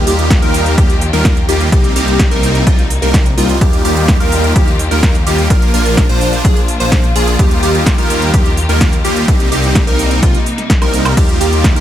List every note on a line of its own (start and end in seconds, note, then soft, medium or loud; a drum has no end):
0.00 1.70 D#3 medium
0.00 1.68 A#3 medium
0.00 1.68 F4 medium
0.00 1.70 G4 medium
0.07 0.40 D#2 loud
0.07 0.40 G3 loud
0.07 0.40 A#3 medium
0.07 0.40 D#4 medium
0.07 0.40 F4 medium
0.07 0.40 G4 loud
0.07 open hi-hat loud
0.19 closed hi-hat soft
0.30 kick loud
0.30 snare loud
0.30 closed hi-hat medium
0.42 0.75 D#2 loud
0.42 0.75 G3 medium
0.42 0.75 A#3 medium
0.42 0.75 D#4 medium
0.42 0.75 F4 medium
0.42 0.75 A#4 loud
0.42 closed hi-hat soft
0.54 open hi-hat loud
0.66 closed hi-hat soft
0.78 1.11 D#2 loud
0.78 0.93 G3 medium
0.78 0.93 A#3 medium
0.78 0.93 D#4 medium
0.78 0.93 F4 medium
0.78 0.93 G4 loud
0.78 kick loud
0.78 closed hi-hat medium
0.90 closed hi-hat soft
1.01 open hi-hat loud
1.13 1.46 D#2 medium
1.13 1.38 G3 medium
1.13 1.38 A#3 medium
1.13 1.38 D#4 medium
1.13 1.38 F4 medium
1.13 1.38 A#4 medium
1.13 snare soft
1.13 closed hi-hat soft
1.25 kick loud
1.25 snare loud
1.25 closed hi-hat medium
1.37 closed hi-hat soft
1.49 1.70 D#2 loud
1.49 1.70 G3 medium
1.49 1.70 A#3 medium
1.49 1.70 D#4 medium
1.49 1.70 F4 medium
1.49 1.69 G4 loud
1.49 1.70 G4 loud
1.49 open hi-hat loud
1.61 closed hi-hat soft
1.72 1.94 C2 loud
1.72 3.59 C3 medium
1.72 1.93 G3 medium
1.72 3.59 G3 medium
1.72 1.93 A#3 medium
1.72 3.59 A#3 medium
1.72 1.93 C4 medium
1.72 1.93 D#4 medium
1.72 3.59 D#4 medium
1.72 1.93 G4 medium
1.72 kick loud
1.72 closed hi-hat medium
1.84 closed hi-hat soft
1.96 2.29 C2 loud
1.96 2.29 G3 loud
1.96 2.29 A#3 medium
1.96 2.29 C4 medium
1.96 2.29 D#4 medium
1.96 2.29 G4 loud
1.96 open hi-hat loud
2.08 closed hi-hat soft
2.19 kick loud
2.19 snare loud
2.19 closed hi-hat medium
2.31 2.64 C2 loud
2.31 2.64 G3 medium
2.31 2.64 A#3 medium
2.31 2.64 C4 medium
2.31 2.64 D#4 medium
2.31 2.64 A#4 loud
2.31 closed hi-hat soft
2.43 open hi-hat loud
2.55 closed hi-hat soft
2.67 3.00 C2 loud
2.67 2.82 G3 medium
2.67 2.82 A#3 medium
2.67 2.82 C4 medium
2.67 2.82 D#4 medium
2.67 2.82 F4 loud
2.67 kick loud
2.67 closed hi-hat medium
2.79 closed hi-hat soft
2.90 open hi-hat loud
3.02 3.35 C2 medium
3.02 3.27 G3 medium
3.02 3.27 A#3 medium
3.02 3.27 C4 medium
3.02 3.27 D#4 medium
3.02 3.27 A#4 medium
3.02 snare soft
3.02 closed hi-hat soft
3.14 kick loud
3.14 snare loud
3.14 closed hi-hat medium
3.26 closed hi-hat soft
3.38 3.59 C2 loud
3.38 3.58 G3 medium
3.38 3.58 A#3 medium
3.38 3.58 C4 medium
3.38 3.58 D#4 medium
3.38 3.58 F4 loud
3.38 open hi-hat loud
3.49 closed hi-hat soft
3.61 3.83 D#2 loud
3.61 5.48 D#3 medium
3.61 3.82 G3 medium
3.61 3.82 A#3 medium
3.61 7.35 A#3 medium
3.61 3.82 D#4 medium
3.61 3.82 F4 medium
3.61 5.48 F4 medium
3.61 3.82 G4 medium
3.61 5.48 G4 medium
3.61 kick loud
3.61 closed hi-hat medium
3.73 closed hi-hat soft
3.85 4.18 D#2 loud
3.85 4.17 G3 loud
3.85 4.17 A#3 medium
3.85 4.17 D#4 medium
3.85 4.17 F4 medium
3.85 4.17 G4 loud
3.85 open hi-hat loud
3.97 closed hi-hat soft
4.08 kick loud
4.08 snare loud
4.08 closed hi-hat medium
4.20 4.53 D#2 loud
4.20 4.53 G3 medium
4.20 4.53 A#3 medium
4.20 4.53 D#4 medium
4.20 4.53 F4 medium
4.20 4.53 A#4 loud
4.20 closed hi-hat soft
4.32 open hi-hat loud
4.44 closed hi-hat soft
4.56 4.89 D#2 loud
4.56 4.71 G3 medium
4.56 4.71 A#3 medium
4.56 4.71 D#4 medium
4.56 4.71 F4 medium
4.56 4.71 G4 loud
4.56 kick loud
4.56 closed hi-hat medium
4.68 closed hi-hat soft
4.79 open hi-hat loud
4.91 5.24 D#2 loud
4.91 5.16 G3 medium
4.91 5.16 A#3 medium
4.91 5.16 D#4 medium
4.91 5.16 F4 medium
4.91 5.16 A#4 medium
4.91 snare soft
4.91 closed hi-hat soft
5.03 kick loud
5.03 snare loud
5.03 closed hi-hat medium
5.15 closed hi-hat soft
5.27 5.48 D#2 loud
5.27 5.47 G3 medium
5.27 5.47 A#3 medium
5.27 5.47 D#4 medium
5.27 5.47 F4 medium
5.27 5.47 G4 loud
5.27 open hi-hat loud
5.38 closed hi-hat soft
5.50 5.72 A#1 loud
5.50 5.71 F3 medium
5.50 5.71 A#3 medium
5.50 5.71 D4 medium
5.50 7.37 D4 medium
5.50 5.71 F4 medium
5.50 9.24 F4 medium
5.50 5.71 A#4 medium
5.50 5.71 A#4 loud
5.50 kick loud
5.50 closed hi-hat medium
5.62 closed hi-hat soft
5.74 6.07 A#1 loud
5.74 6.06 F3 loud
5.74 6.06 A#3 medium
5.74 6.06 D4 medium
5.74 6.06 F4 medium
5.74 6.06 A#4 loud
5.74 open hi-hat loud
5.86 closed hi-hat soft
5.97 kick loud
5.97 snare loud
5.97 closed hi-hat loud
6.09 6.42 A#1 loud
6.09 6.42 F3 medium
6.09 6.42 A#3 medium
6.09 6.42 D4 medium
6.09 6.42 F4 medium
6.09 6.42 C5 loud
6.09 closed hi-hat soft
6.21 open hi-hat loud
6.33 closed hi-hat soft
6.45 6.78 A#1 loud
6.45 6.60 F3 medium
6.45 6.60 A#3 medium
6.45 6.60 D4 medium
6.45 6.60 F4 medium
6.45 6.60 G#4 loud
6.45 kick loud
6.45 closed hi-hat medium
6.57 closed hi-hat soft
6.68 open hi-hat loud
6.80 7.13 A#1 loud
6.80 7.05 F3 medium
6.80 7.05 A#3 medium
6.80 7.05 D4 medium
6.80 7.05 F4 medium
6.80 7.05 C5 medium
6.80 7.05 C5 loud
6.80 closed hi-hat soft
6.92 kick loud
6.92 snare loud
6.92 closed hi-hat medium
7.04 closed hi-hat soft
7.16 7.37 A#1 medium
7.16 7.36 F3 medium
7.16 7.36 A#3 medium
7.16 7.36 D4 medium
7.16 7.36 F4 medium
7.16 7.36 G#4 loud
7.16 open hi-hat loud
7.27 closed hi-hat soft
7.39 7.60 D#2 loud
7.39 9.26 D#3 medium
7.39 7.60 G3 medium
7.39 7.60 A#3 medium
7.39 11.80 A#3 medium
7.39 7.60 D#4 medium
7.39 7.60 F4 medium
7.39 7.60 G4 loud
7.39 7.60 G4 medium
7.39 9.26 G4 medium
7.39 kick loud
7.39 closed hi-hat medium
7.51 closed hi-hat soft
7.63 7.96 D#2 loud
7.63 7.95 G3 loud
7.63 7.95 A#3 medium
7.63 7.95 D#4 medium
7.63 7.95 F4 medium
7.63 7.95 G4 loud
7.63 open hi-hat loud
7.75 closed hi-hat soft
7.86 kick loud
7.86 snare loud
7.86 closed hi-hat loud
7.98 8.31 D#2 loud
7.98 8.31 G3 medium
7.98 8.31 A#3 medium
7.98 8.31 D#4 medium
7.98 8.31 F4 medium
7.98 8.31 A#4 loud
7.98 closed hi-hat soft
8.10 open hi-hat loud
8.22 closed hi-hat soft
8.34 8.67 D#2 loud
8.34 8.49 G3 medium
8.34 8.49 A#3 medium
8.34 8.49 D#4 medium
8.34 8.49 F4 medium
8.34 8.49 G4 loud
8.34 kick loud
8.34 closed hi-hat loud
8.46 closed hi-hat soft
8.57 open hi-hat loud
8.69 9.02 D#2 loud
8.69 8.94 G3 medium
8.69 8.94 A#3 medium
8.69 8.94 D#4 medium
8.69 8.94 F4 medium
8.69 8.94 A#4 medium
8.69 snare soft
8.69 closed hi-hat soft
8.81 kick loud
8.81 snare loud
8.81 closed hi-hat loud
8.93 closed hi-hat soft
9.05 9.26 D#2 loud
9.05 9.25 G3 medium
9.05 9.25 A#3 medium
9.05 9.25 D#4 medium
9.05 9.25 F4 medium
9.05 9.25 G4 loud
9.05 open hi-hat loud
9.16 closed hi-hat soft
9.28 9.49 C2 loud
9.28 11.15 C3 medium
9.28 9.49 G3 medium
9.28 11.15 G3 medium
9.28 9.49 A#3 medium
9.28 9.49 C4 medium
9.28 9.49 D#4 medium
9.28 11.15 D#4 medium
9.28 9.49 G4 medium
9.28 kick loud
9.28 closed hi-hat loud
9.40 closed hi-hat soft
9.52 9.85 C2 loud
9.52 9.84 G3 loud
9.52 9.84 A#3 medium
9.52 9.84 C4 medium
9.52 9.84 D#4 medium
9.52 9.84 G4 loud
9.52 open hi-hat loud
9.64 closed hi-hat soft
9.75 kick loud
9.75 snare loud
9.75 closed hi-hat loud
9.87 10.20 C2 loud
9.87 10.20 G3 loud
9.87 10.20 A#3 medium
9.87 10.20 C4 medium
9.87 10.20 D#4 medium
9.87 10.20 A#4 loud
9.87 closed hi-hat soft
9.99 open hi-hat loud
10.11 closed hi-hat soft
10.23 10.36 C2 loud
10.23 10.38 G3 medium
10.23 10.38 A#3 medium
10.23 10.38 C4 medium
10.23 10.38 D#4 medium
10.23 10.38 F4 loud
10.23 kick loud
10.23 closed hi-hat loud
10.35 closed hi-hat soft
10.46 open hi-hat loud
10.58 snare soft
10.58 closed hi-hat soft
10.70 kick loud
10.70 snare loud
10.70 closed hi-hat loud
10.82 11.15 C2 loud
10.82 11.14 G3 loud
10.82 11.14 A#3 medium
10.82 11.14 C4 medium
10.82 11.14 D#4 medium
10.82 11.14 A#4 loud
10.82 closed hi-hat soft
10.82 high woodblock medium
10.94 open hi-hat loud
11.05 closed hi-hat soft
11.05 high woodblock medium
11.17 11.38 D#2 loud
11.17 11.80 D#3 medium
11.17 11.38 G3 medium
11.17 11.38 A#3 medium
11.17 11.38 D#4 medium
11.17 11.38 F4 medium
11.17 11.80 F4 medium
11.17 11.38 G4 medium
11.17 11.38 G4 loud
11.17 11.80 G4 medium
11.17 kick loud
11.17 closed hi-hat loud
11.17 crash medium
11.29 closed hi-hat soft
11.41 11.74 D#2 loud
11.41 11.73 G3 loud
11.41 11.73 A#3 medium
11.41 11.73 D#4 medium
11.41 11.73 F4 medium
11.41 11.73 G4 loud
11.41 open hi-hat loud
11.53 closed hi-hat soft
11.64 kick loud
11.64 snare loud
11.64 closed hi-hat loud
11.76 11.80 D#2 loud
11.76 11.80 G3 medium
11.76 11.80 A#3 medium
11.76 11.80 D#4 medium
11.76 11.80 F4 medium
11.76 11.80 A#4 loud
11.76 closed hi-hat soft